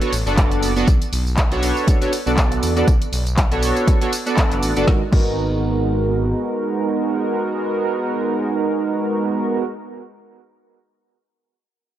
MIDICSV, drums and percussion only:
0, 0, Header, 1, 2, 480
1, 0, Start_track
1, 0, Tempo, 500000
1, 840, Time_signature, 4, 2, 24, 8
1, 11508, End_track
2, 0, Start_track
2, 0, Title_t, "Drums"
2, 15, Note_on_c, 9, 42, 57
2, 16, Note_on_c, 9, 54, 24
2, 111, Note_off_c, 9, 42, 0
2, 112, Note_off_c, 9, 54, 0
2, 120, Note_on_c, 9, 46, 102
2, 122, Note_on_c, 9, 54, 82
2, 216, Note_off_c, 9, 46, 0
2, 218, Note_off_c, 9, 54, 0
2, 256, Note_on_c, 9, 54, 36
2, 352, Note_off_c, 9, 54, 0
2, 356, Note_on_c, 9, 39, 114
2, 360, Note_on_c, 9, 42, 78
2, 361, Note_on_c, 9, 36, 105
2, 362, Note_on_c, 9, 54, 49
2, 452, Note_off_c, 9, 39, 0
2, 456, Note_off_c, 9, 42, 0
2, 457, Note_off_c, 9, 36, 0
2, 458, Note_off_c, 9, 54, 0
2, 494, Note_on_c, 9, 42, 52
2, 496, Note_on_c, 9, 54, 24
2, 590, Note_off_c, 9, 42, 0
2, 592, Note_off_c, 9, 54, 0
2, 600, Note_on_c, 9, 46, 89
2, 602, Note_on_c, 9, 54, 84
2, 696, Note_off_c, 9, 46, 0
2, 698, Note_off_c, 9, 54, 0
2, 735, Note_on_c, 9, 42, 38
2, 736, Note_on_c, 9, 54, 36
2, 831, Note_off_c, 9, 42, 0
2, 832, Note_off_c, 9, 54, 0
2, 841, Note_on_c, 9, 36, 111
2, 841, Note_on_c, 9, 42, 84
2, 842, Note_on_c, 9, 54, 48
2, 937, Note_off_c, 9, 36, 0
2, 937, Note_off_c, 9, 42, 0
2, 938, Note_off_c, 9, 54, 0
2, 975, Note_on_c, 9, 42, 56
2, 977, Note_on_c, 9, 54, 25
2, 1071, Note_off_c, 9, 42, 0
2, 1073, Note_off_c, 9, 54, 0
2, 1081, Note_on_c, 9, 46, 100
2, 1082, Note_on_c, 9, 54, 83
2, 1177, Note_off_c, 9, 46, 0
2, 1178, Note_off_c, 9, 54, 0
2, 1217, Note_on_c, 9, 54, 35
2, 1313, Note_off_c, 9, 54, 0
2, 1316, Note_on_c, 9, 39, 118
2, 1321, Note_on_c, 9, 36, 102
2, 1321, Note_on_c, 9, 42, 85
2, 1322, Note_on_c, 9, 54, 48
2, 1412, Note_off_c, 9, 39, 0
2, 1417, Note_off_c, 9, 36, 0
2, 1417, Note_off_c, 9, 42, 0
2, 1418, Note_off_c, 9, 54, 0
2, 1455, Note_on_c, 9, 42, 54
2, 1457, Note_on_c, 9, 54, 23
2, 1551, Note_off_c, 9, 42, 0
2, 1553, Note_off_c, 9, 54, 0
2, 1561, Note_on_c, 9, 46, 90
2, 1562, Note_on_c, 9, 54, 85
2, 1657, Note_off_c, 9, 46, 0
2, 1658, Note_off_c, 9, 54, 0
2, 1697, Note_on_c, 9, 54, 35
2, 1793, Note_off_c, 9, 54, 0
2, 1801, Note_on_c, 9, 36, 118
2, 1802, Note_on_c, 9, 42, 85
2, 1803, Note_on_c, 9, 54, 48
2, 1897, Note_off_c, 9, 36, 0
2, 1898, Note_off_c, 9, 42, 0
2, 1899, Note_off_c, 9, 54, 0
2, 1936, Note_on_c, 9, 42, 57
2, 1937, Note_on_c, 9, 54, 25
2, 2032, Note_off_c, 9, 42, 0
2, 2033, Note_off_c, 9, 54, 0
2, 2042, Note_on_c, 9, 46, 104
2, 2043, Note_on_c, 9, 54, 84
2, 2138, Note_off_c, 9, 46, 0
2, 2139, Note_off_c, 9, 54, 0
2, 2177, Note_on_c, 9, 54, 36
2, 2273, Note_off_c, 9, 54, 0
2, 2277, Note_on_c, 9, 39, 115
2, 2281, Note_on_c, 9, 36, 103
2, 2282, Note_on_c, 9, 42, 83
2, 2283, Note_on_c, 9, 54, 46
2, 2373, Note_off_c, 9, 39, 0
2, 2377, Note_off_c, 9, 36, 0
2, 2378, Note_off_c, 9, 42, 0
2, 2379, Note_off_c, 9, 54, 0
2, 2416, Note_on_c, 9, 42, 54
2, 2417, Note_on_c, 9, 54, 24
2, 2512, Note_off_c, 9, 42, 0
2, 2513, Note_off_c, 9, 54, 0
2, 2522, Note_on_c, 9, 46, 91
2, 2523, Note_on_c, 9, 54, 83
2, 2618, Note_off_c, 9, 46, 0
2, 2619, Note_off_c, 9, 54, 0
2, 2656, Note_on_c, 9, 42, 39
2, 2657, Note_on_c, 9, 54, 37
2, 2752, Note_off_c, 9, 42, 0
2, 2753, Note_off_c, 9, 54, 0
2, 2760, Note_on_c, 9, 36, 116
2, 2762, Note_on_c, 9, 42, 86
2, 2763, Note_on_c, 9, 54, 48
2, 2856, Note_off_c, 9, 36, 0
2, 2858, Note_off_c, 9, 42, 0
2, 2859, Note_off_c, 9, 54, 0
2, 2896, Note_on_c, 9, 42, 58
2, 2897, Note_on_c, 9, 54, 24
2, 2992, Note_off_c, 9, 42, 0
2, 2993, Note_off_c, 9, 54, 0
2, 3002, Note_on_c, 9, 46, 101
2, 3003, Note_on_c, 9, 54, 81
2, 3098, Note_off_c, 9, 46, 0
2, 3099, Note_off_c, 9, 54, 0
2, 3135, Note_on_c, 9, 42, 39
2, 3137, Note_on_c, 9, 54, 34
2, 3231, Note_off_c, 9, 42, 0
2, 3233, Note_off_c, 9, 54, 0
2, 3236, Note_on_c, 9, 39, 127
2, 3241, Note_on_c, 9, 36, 101
2, 3241, Note_on_c, 9, 42, 82
2, 3242, Note_on_c, 9, 54, 48
2, 3332, Note_off_c, 9, 39, 0
2, 3337, Note_off_c, 9, 36, 0
2, 3337, Note_off_c, 9, 42, 0
2, 3338, Note_off_c, 9, 54, 0
2, 3375, Note_on_c, 9, 42, 58
2, 3376, Note_on_c, 9, 54, 24
2, 3471, Note_off_c, 9, 42, 0
2, 3472, Note_off_c, 9, 54, 0
2, 3480, Note_on_c, 9, 46, 92
2, 3482, Note_on_c, 9, 54, 86
2, 3576, Note_off_c, 9, 46, 0
2, 3578, Note_off_c, 9, 54, 0
2, 3614, Note_on_c, 9, 42, 40
2, 3616, Note_on_c, 9, 54, 35
2, 3710, Note_off_c, 9, 42, 0
2, 3712, Note_off_c, 9, 54, 0
2, 3720, Note_on_c, 9, 36, 119
2, 3721, Note_on_c, 9, 42, 82
2, 3722, Note_on_c, 9, 54, 48
2, 3816, Note_off_c, 9, 36, 0
2, 3817, Note_off_c, 9, 42, 0
2, 3818, Note_off_c, 9, 54, 0
2, 3854, Note_on_c, 9, 42, 58
2, 3856, Note_on_c, 9, 54, 25
2, 3950, Note_off_c, 9, 42, 0
2, 3952, Note_off_c, 9, 54, 0
2, 3961, Note_on_c, 9, 46, 107
2, 3962, Note_on_c, 9, 54, 85
2, 4057, Note_off_c, 9, 46, 0
2, 4058, Note_off_c, 9, 54, 0
2, 4095, Note_on_c, 9, 42, 40
2, 4097, Note_on_c, 9, 54, 36
2, 4191, Note_off_c, 9, 42, 0
2, 4193, Note_off_c, 9, 54, 0
2, 4196, Note_on_c, 9, 39, 121
2, 4200, Note_on_c, 9, 36, 107
2, 4201, Note_on_c, 9, 42, 83
2, 4202, Note_on_c, 9, 54, 46
2, 4292, Note_off_c, 9, 39, 0
2, 4296, Note_off_c, 9, 36, 0
2, 4297, Note_off_c, 9, 42, 0
2, 4298, Note_off_c, 9, 54, 0
2, 4330, Note_on_c, 9, 39, 38
2, 4335, Note_on_c, 9, 42, 58
2, 4336, Note_on_c, 9, 54, 23
2, 4426, Note_off_c, 9, 39, 0
2, 4431, Note_off_c, 9, 42, 0
2, 4432, Note_off_c, 9, 54, 0
2, 4441, Note_on_c, 9, 46, 86
2, 4442, Note_on_c, 9, 54, 81
2, 4537, Note_off_c, 9, 46, 0
2, 4538, Note_off_c, 9, 54, 0
2, 4575, Note_on_c, 9, 42, 40
2, 4576, Note_on_c, 9, 54, 35
2, 4671, Note_off_c, 9, 42, 0
2, 4672, Note_off_c, 9, 54, 0
2, 4681, Note_on_c, 9, 36, 120
2, 4681, Note_on_c, 9, 38, 89
2, 4777, Note_off_c, 9, 36, 0
2, 4777, Note_off_c, 9, 38, 0
2, 4921, Note_on_c, 9, 36, 116
2, 4921, Note_on_c, 9, 49, 89
2, 5017, Note_off_c, 9, 36, 0
2, 5017, Note_off_c, 9, 49, 0
2, 11508, End_track
0, 0, End_of_file